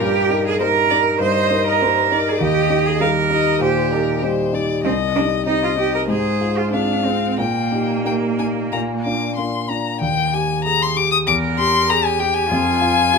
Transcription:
0.00 0.30 G2 medium
0.00 0.46 G4 medium
0.00 0.58 A#4 medium
0.30 0.57 D#4 soft
0.30 0.58 A#4 soft
0.47 0.61 G#4 medium
0.59 0.88 G3 soft
0.59 0.88 D#4 soft
0.59 0.88 A#4 soft
0.59 1.20 A#4 medium
0.59 0.67 C5 medium
0.90 1.18 D#4 soft
0.90 1.19 A#4 soft
0.90 0.98 D5 medium
1.20 1.50 G2 medium
1.20 1.66 C5 medium
1.20 1.82 D#5 medium
1.50 1.78 D#4 soft
1.50 1.79 A#4 soft
1.67 2.30 A#4 medium
1.81 2.09 G3 soft
1.81 2.09 D#4 soft
1.81 2.10 A#4 soft
1.81 2.13 C5 medium
2.12 2.39 D#4 soft
2.12 2.39 A#4 soft
2.12 2.44 D5 medium
2.28 2.41 G#4 medium
2.41 2.70 D#2 medium
2.41 2.87 G4 medium
2.41 3.00 D#5 medium
2.70 2.98 D#4 soft
2.70 2.98 G4 soft
2.86 3.02 G#4 medium
3.00 3.28 G3 soft
3.00 3.28 D#4 soft
3.00 3.29 G4 soft
3.00 3.62 A#4 medium
3.00 3.09 F5 medium
3.30 3.58 D#4 soft
3.30 3.58 G4 soft
3.30 3.62 D#5 medium
3.60 3.91 A#2 soft
3.60 4.22 G4 medium
3.60 3.93 C5 medium
3.92 4.20 D#4 soft
3.92 4.20 G4 soft
3.92 4.24 A#4 soft
4.22 4.50 G3 soft
4.22 4.50 D#4 soft
4.22 4.51 G4 soft
4.22 4.56 C5 medium
4.53 4.81 D#4 soft
4.53 4.81 G4 soft
4.53 4.83 D5 medium
4.83 5.14 C2 soft
4.83 4.92 C4 medium
4.83 5.45 D#5 medium
5.15 5.23 D4 medium
5.15 5.44 D#4 soft
5.15 5.44 G4 soft
5.46 5.75 C4 soft
5.46 5.62 D#4 medium
5.46 5.75 D#4 soft
5.46 5.75 G4 soft
5.46 6.08 D#5 medium
5.63 5.69 F4 medium
5.76 6.05 D#4 soft
5.76 6.06 G4 soft
5.76 5.93 G4 medium
5.95 6.01 A#4 medium
6.08 6.39 G#2 medium
6.08 6.59 G#4 medium
6.08 6.75 C5 medium
6.41 6.70 F4 soft
6.41 6.70 G#4 soft
6.58 6.71 F4 medium
6.72 7.02 C4 soft
6.72 7.06 D4 medium
6.72 7.02 F4 soft
6.72 7.03 G#4 soft
6.72 7.38 F5 medium
7.04 7.40 C4 medium
7.04 7.35 F4 soft
7.04 7.36 G#4 soft
7.38 7.71 A#2 soft
7.38 9.38 A#3 medium
7.38 7.98 G5 soft
7.72 8.02 D#4 soft
7.72 8.03 G4 soft
8.04 8.35 A#3 soft
8.04 8.35 D#4 soft
8.04 8.36 G4 soft
8.04 8.14 G5 soft
8.39 8.69 D#4 soft
8.39 8.69 G4 soft
8.39 8.47 G#5 soft
8.72 9.05 A#2 soft
8.72 8.80 A#5 soft
9.05 9.35 D4 soft
9.05 9.35 F4 soft
9.05 9.35 D6 medium
9.35 9.67 A#3 soft
9.35 9.67 D4 soft
9.35 9.67 F4 soft
9.35 9.71 C6 medium
9.69 9.99 D4 soft
9.69 9.99 F4 soft
9.69 10.00 A#5 soft
10.01 11.23 D#2 medium
10.01 10.35 G5 medium
10.33 10.84 G4 soft
10.33 10.64 G#5 medium
10.64 10.96 G#4 soft
10.64 10.83 A#5 medium
10.82 10.98 C6 medium
10.96 11.27 G4 soft
10.96 11.11 D6 medium
11.11 11.18 D#6 medium
11.27 12.47 E2 medium
11.27 11.91 A#4 medium
11.27 11.35 D6 medium
11.58 12.08 G4 medium
11.58 11.91 C6 medium
11.89 12.50 G4 medium
11.89 12.20 G#4 soft
11.89 12.06 A#5 medium
12.05 12.21 G#5 medium
12.19 12.51 G4 soft
12.19 12.36 G5 medium
12.34 13.18 G#5 medium
12.51 13.18 F2 medium
12.51 13.18 F4 medium
12.82 13.18 F4 medium
13.13 13.18 G4 soft

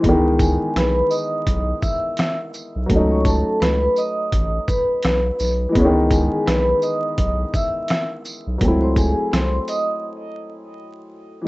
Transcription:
0.00 2.83 E3 medium
0.00 2.85 G#3 medium
0.00 kick loud
0.00 closed hi-hat medium
0.04 0.58 C#2 loud
0.04 2.86 B3 medium
0.09 2.88 D#3 medium
0.39 0.72 G#4 medium
0.39 0.72 G#5 medium
0.39 kick loud
0.39 closed hi-hat medium
0.39 tambourine medium
0.39 shaker medium
0.76 1.03 B1 loud
0.76 0.94 B4 medium
0.76 0.95 B5 medium
0.76 cross-stick medium
0.76 snare loud
0.76 closed hi-hat medium
0.96 1.09 B4 medium
0.96 1.09 B5 medium
1.10 1.78 D#5 medium
1.10 1.78 D#6 medium
1.10 tambourine medium
1.10 shaker medium
1.47 1.74 B1 medium
1.47 kick medium
1.47 closed hi-hat medium
1.82 2.36 E5 medium
1.82 2.36 E6 medium
1.82 kick medium
1.82 tambourine soft
1.82 shaker medium
2.17 cross-stick loud
2.17 snare loud
2.17 closed hi-hat medium
2.54 tambourine medium
2.54 shaker medium
2.76 2.86 B1 medium
2.86 3.43 C#2 loud
2.86 5.70 F#3 medium
2.86 5.71 A3 medium
2.86 kick loud
2.86 closed hi-hat medium
2.92 5.73 C#4 medium
2.92 5.74 D#4 medium
3.11 3.24 C#5 medium
3.11 3.24 C#6 medium
3.25 3.57 A4 medium
3.25 3.58 A5 medium
3.25 kick loud
3.25 closed hi-hat medium
3.25 tambourine medium
3.25 shaker medium
3.60 3.88 C#2 medium
3.60 3.80 B4 medium
3.60 3.80 B5 medium
3.60 cross-stick medium
3.60 snare loud
3.60 closed hi-hat medium
3.82 3.95 B4 medium
3.82 3.96 B5 medium
3.96 4.65 D#5 medium
3.96 4.65 D#6 medium
3.96 tambourine medium
3.96 shaker soft
4.32 4.59 A1 loud
4.32 kick medium
4.32 closed hi-hat medium
4.68 5.71 B4 medium
4.68 5.72 B5 medium
4.68 kick loud
4.68 tambourine soft
4.68 shaker medium
5.03 5.31 B1 loud
5.03 cross-stick loud
5.03 snare loud
5.03 closed hi-hat medium
5.39 5.67 B1 loud
5.39 snare soft
5.39 tambourine medium
5.39 shaker medium
5.69 8.54 E3 medium
5.69 8.56 G#3 medium
5.75 6.29 C#2 loud
5.75 8.57 B3 medium
5.75 5.85 C#4 medium
5.75 kick loud
5.75 closed hi-hat medium
5.85 8.62 D#3 medium
6.10 6.43 G#4 medium
6.10 6.43 G#5 medium
6.10 kick loud
6.10 closed hi-hat medium
6.10 tambourine medium
6.10 shaker medium
6.46 6.74 B1 loud
6.46 6.66 B4 medium
6.46 6.66 B5 medium
6.46 cross-stick medium
6.46 snare loud
6.46 closed hi-hat medium
6.69 6.81 B4 medium
6.69 6.82 B5 medium
6.82 7.50 D#5 medium
6.82 7.50 D#6 medium
6.82 tambourine medium
6.82 shaker soft
7.18 7.45 B1 loud
7.18 kick medium
7.18 closed hi-hat medium
7.54 8.08 E5 medium
7.54 8.08 E6 medium
7.54 kick loud
7.54 tambourine soft
7.54 shaker medium
7.88 cross-stick loud
7.88 snare loud
7.88 closed hi-hat medium
8.25 tambourine medium
8.25 shaker medium
8.47 8.58 B1 medium
8.58 9.15 C#2 loud
8.58 11.41 F#3 medium
8.58 11.43 A3 medium
8.58 kick loud
8.58 closed hi-hat medium
8.65 11.45 C4 medium
8.65 11.46 E4 medium
8.82 8.95 C5 medium
8.82 8.96 C6 medium
8.96 9.29 G#4 medium
8.96 9.29 G#5 medium
8.96 kick loud
8.96 closed hi-hat medium
8.96 tambourine medium
8.96 shaker medium
9.32 9.60 C2 medium
9.32 9.51 C5 medium
9.32 9.52 C6 medium
9.32 cross-stick medium
9.32 snare loud
9.32 closed hi-hat medium
9.53 9.66 C5 medium
9.53 9.67 C6 medium
9.68 10.02 D#5 medium
9.68 10.02 D#6 medium
9.68 closed hi-hat medium
9.68 tambourine medium
9.68 shaker soft
11.42 11.48 E3 medium
11.42 11.48 G#3 medium

